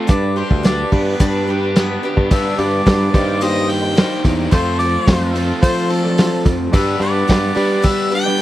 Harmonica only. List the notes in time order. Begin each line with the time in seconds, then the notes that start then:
0.09 D5
0.37 C5
0.65 D5
0.92 B4
2.32 E5
2.59 D5
3.42 D#5
3.69 G5
4.51 C5
4.79 D5
5.62 C5
5.91 A4
6.73 E5
7.01 D5
7.86 E5
8.14 G5